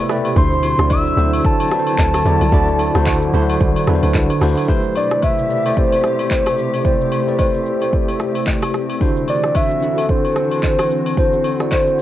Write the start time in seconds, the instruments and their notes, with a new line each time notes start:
Already playing: ambient pad B2 C3 A3 G4, tine electric piano A3 B3 E4 G4 B4 C5 D5
0.09 tine electric piano A3 E4 G4 B4 D5, cross-stick, shaker
0.25 high agogo, shaker
0.36 log drum bass D2, tine electric piano D3 D4 E4 F#4 C5, ambient pad D3 F#3 C4 E4, soft synth lead C6, kick, shaker
0.52 shaker
0.63 high agogo, shaker
0.78 log drum bass D2, tine electric piano D3 D4 E4 F#4 D5, cross-stick, shaker
0.90 soft synth lead E6, kick, high agogo, low woodblock, shaker
1.06 shaker
1.17 log drum bass D2, tine electric piano D3 D4 E4 F#4 C5, shaker
1.33 high agogo, shaker
1.44 soft synth lead A5, kick, shaker
1.60 high agogo, shaker
1.71 tine electric piano D3 D4 E4 F#4 B4, cross-stick, shaker
1.79 tine electric piano C5
1.87 high agogo, shaker
1.98 log drum bass D2, kick, clap, low woodblock, shaker
2.14 cross-stick, high agogo, shaker
2.25 log drum bass E2, tine electric piano D3 D4 E4 F#4 D5, shaker
2.41 log drum bass C2, high agogo, shaker
2.52 log drum bass D2, tine electric piano D3 D4 E4 F#4 D5, ambient pad D4, kick, shaker
2.68 shaker
2.79 high agogo, shaker
2.95 log drum bass D2, tine electric piano D3 D4 E4 F#4 C5, cross-stick, shaker
3.06 kick, clap, high agogo, low woodblock, shaker
3.22 shaker
3.33 log drum bass D2, tine electric piano D3 D4 E4 F#4 C5, shaker
3.49 high agogo, shaker
3.60 log drum bass C2, kick, shaker
3.76 high agogo, shaker
3.87 log drum bass E2, tine electric piano D3 D4 E4 F#4 B4, cross-stick, shaker
3.95 tine electric piano C5
4.03 log drum bass D2, high agogo, shaker
4.14 log drum bass C2, kick, clap, low woodblock, shaker
4.30 high agogo, shaker
4.41 log drum bass D2, tine electric piano D3 D4 E4 F#4 C5, cross-stick, open hi-hat, shaker
4.57 high agogo, shaker
4.68 ambient pad B2 C3 A3 G4, tine electric piano A3 E4 G4 B4 C5, kick, shaker
4.84 shaker
4.96 soft synth lead D5, high agogo, shaker
5.11 cross-stick, shaker
5.22 soft synth lead E5, kick, high agogo, low woodblock, shaker
5.38 shaker
5.49 tine electric piano A3 E4 G4 B4 D5, shaker
5.65 tine electric piano A3 E4 G4 C5 D5, high agogo, shaker
5.76 soft synth lead C5, kick, shaker
5.92 high agogo, shaker
6.04 cross-stick, shaker
6.19 high agogo, shaker
6.31 kick, clap, low woodblock, shaker
6.46 cross-stick, high agogo, shaker
6.58 shaker
6.74 high agogo, shaker
6.84 tine electric piano A3 E4 G4 C5 D5, ambient pad C4, soft synth lead C5, kick, shaker
7.00 shaker
7.12 high agogo, shaker
7.27 tine electric piano A3 E4 G4 B4 D5, shaker
7.39 soft synth lead C5, kick, high agogo, low woodblock, shaker
7.54 shaker
7.66 shaker
7.81 tine electric piano A3 E4 G4 C5 D5, high agogo, shaker
7.93 kick, shaker
8.09 high agogo, shaker
8.20 cross-stick, shaker
8.35 high agogo, shaker
8.47 kick, clap, low woodblock, shaker
8.62 cross-stick, high agogo, shaker
8.74 cross-stick, shaker
8.90 high agogo, shaker
9.00 tine electric piano D3 D4 E4 F#4 C5, ambient pad E3 D4 F#4, kick, shaker
9.17 shaker
9.28 soft synth lead D5, high agogo, shaker
9.43 cross-stick, shaker
9.55 soft synth lead E5, kick, high agogo, low woodblock, shaker
9.71 shaker
9.82 tine electric piano D3 D4 E4 F#4 A4, shaker
9.97 tine electric piano D3 D4 E4 F#4 A4, high agogo, shaker
10.09 soft synth lead C5, kick, shaker
10.25 high agogo, shaker
10.36 cross-stick, shaker
10.52 high agogo, shaker
10.63 kick, clap, low woodblock, shaker
10.79 cross-stick, high agogo, shaker
10.90 shaker
11.06 high agogo, shaker
11.17 tine electric piano D3 D4 E4 F#4 C5, ambient pad E4, soft synth lead C5, kick, shaker
11.33 shaker
11.44 high agogo, shaker
11.60 tine electric piano D3 D4 E4 F#4 D5, cross-stick, shaker
11.71 soft synth lead C5, kick, clap, high agogo, low woodblock, shaker
11.87 shaker
11.99 shaker